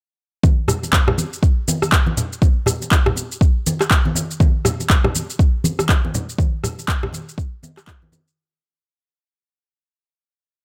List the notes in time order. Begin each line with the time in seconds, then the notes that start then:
0.43 kick, muted conga, high conga, shaker
0.68 cross-stick, low conga, shaker
0.83 muted conga, shaker
0.92 kick, clap, low conga, shaker
1.08 cross-stick, low conga
1.18 muted conga, high conga, shaker
1.33 shaker
1.43 kick, shaker
1.68 muted conga, high conga, shaker
1.82 cross-stick, high conga, shaker
1.92 kick, clap, shaker
2.07 muted conga, high conga
2.17 low conga, shaker
2.33 shaker
2.42 kick, muted conga, high conga, shaker
2.66 cross-stick, low conga, shaker
2.82 muted conga, shaker
2.91 kick, clap, shaker
3.06 cross-stick, low conga
3.16 muted conga, high conga, shaker
3.32 shaker
3.41 kick, shaker
3.66 muted conga, high conga, shaker
3.81 cross-stick, clap, shaker
3.91 kick, clap, shaker
4.05 muted conga, high conga
4.15 high conga, shaker
4.31 shaker
4.40 kick, muted conga, high conga, shaker
4.65 cross-stick, low conga, shaker
4.80 muted conga, shaker
4.90 kick, clap, low conga, shaker
5.04 cross-stick, low conga
5.15 muted conga, high conga, shaker
5.30 shaker
5.39 kick, shaker
5.64 muted conga, high conga, shaker
5.79 cross-stick, high conga, shaker
5.89 kick, clap, shaker
6.05 muted conga, high conga
6.14 low conga, shaker
6.29 shaker
6.38 kick, muted conga, high conga, shaker
6.64 cross-stick, low conga, shaker
6.79 muted conga, shaker
6.88 kick, clap, shaker
7.03 cross-stick, low conga
7.13 muted conga, high conga, shaker
7.29 shaker
7.38 kick, shaker
7.63 muted conga, high conga, shaker
7.77 cross-stick, clap, shaker
7.87 kick, clap, shaker
8.02 muted conga, high conga
8.12 high conga, shaker
8.28 shaker